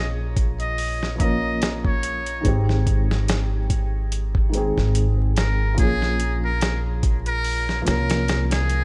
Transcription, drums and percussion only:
0.37 kick medium
0.37 closed hi-hat medium
0.60 closed hi-hat soft
0.78 open hi-hat medium
1.03 snare soft
1.20 kick medium
1.20 closed hi-hat medium
1.62 snare loud
1.62 closed hi-hat medium
1.85 kick medium
2.03 closed hi-hat medium
2.26 closed hi-hat soft
2.45 kick loud
2.45 closed hi-hat medium
2.69 snare soft
2.87 kick medium
2.87 closed hi-hat medium
3.11 snare soft
3.28 snare loud
3.28 closed hi-hat medium
3.70 kick medium
3.70 closed hi-hat medium
4.12 closed hi-hat medium
4.35 kick medium
4.54 closed hi-hat medium
4.78 snare soft
4.95 closed hi-hat medium
5.36 snare loud
5.36 closed hi-hat medium
5.78 kick loud
5.78 closed hi-hat medium
6.02 snare soft
6.20 closed hi-hat medium
6.61 snare loud
6.61 closed hi-hat medium
7.03 kick medium
7.03 closed hi-hat medium
7.26 closed hi-hat soft
7.45 open hi-hat medium
7.69 snare soft
7.87 snare medium
7.87 closed hi-hat medium
8.10 snare loud
8.10 closed hi-hat medium
8.28 snare loud
8.28 closed hi-hat medium
8.51 snare loud
8.51 closed hi-hat medium
8.69 closed hi-hat medium

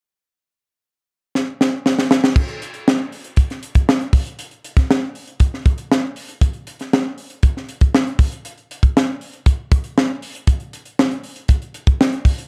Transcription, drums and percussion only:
1.35 snare medium
1.61 snare medium
1.86 snare medium
1.99 snare medium
2.11 snare loud
2.24 snare medium
2.36 kick loud
2.36 crash medium
2.48 closed hi-hat soft
2.62 closed hi-hat medium
2.74 closed hi-hat soft
2.88 snare loud
3.12 open hi-hat medium
3.24 closed hi-hat soft
3.36 kick medium
3.36 closed hi-hat medium
3.50 snare soft
3.50 closed hi-hat soft
3.63 closed hi-hat medium
3.75 kick medium
3.75 closed hi-hat medium
3.89 snare loud
4.01 closed hi-hat soft
4.13 kick loud
4.13 open hi-hat medium
4.26 closed hi-hat medium
4.39 closed hi-hat medium
4.51 closed hi-hat soft
4.64 closed hi-hat medium
4.77 kick medium
4.77 snare soft
4.77 closed hi-hat soft
4.91 snare loud
5.15 open hi-hat medium
5.27 closed hi-hat soft
5.40 kick medium
5.40 closed hi-hat medium
5.54 snare soft
5.66 kick loud
5.66 closed hi-hat medium
5.78 closed hi-hat soft
5.92 snare loud
6.16 open hi-hat medium
6.29 closed hi-hat medium
6.41 kick medium
6.41 closed hi-hat medium
6.53 closed hi-hat soft
6.67 closed hi-hat medium
6.79 snare soft
6.79 closed hi-hat soft
6.93 snare loud
7.18 open hi-hat medium
7.30 closed hi-hat medium
7.43 kick medium
7.43 closed hi-hat medium
7.57 snare soft
7.69 closed hi-hat medium
7.81 kick medium
7.81 closed hi-hat soft
7.94 snare loud
8.07 closed hi-hat soft
8.19 kick medium
8.19 open hi-hat medium
8.32 closed hi-hat soft
8.45 closed hi-hat medium
8.58 closed hi-hat soft
8.71 closed hi-hat medium
8.83 kick medium
8.83 closed hi-hat soft
8.97 snare loud
9.21 open hi-hat medium
9.34 closed hi-hat soft
9.46 kick medium
9.46 closed hi-hat medium
9.72 kick loud
9.72 closed hi-hat medium
9.84 closed hi-hat soft
9.98 snare loud
10.22 open hi-hat medium
10.35 closed hi-hat soft
10.47 kick loud
10.47 closed hi-hat medium
10.60 closed hi-hat soft
10.73 closed hi-hat medium
10.85 closed hi-hat soft
10.99 snare loud
11.11 closed hi-hat soft
11.23 open hi-hat medium
11.36 closed hi-hat soft
11.48 kick medium
11.48 closed hi-hat medium
11.62 closed hi-hat soft
11.74 closed hi-hat medium
11.87 kick medium
11.87 closed hi-hat soft
12.01 snare loud
12.12 closed hi-hat soft
12.25 kick medium
12.25 open hi-hat medium
12.38 closed hi-hat medium

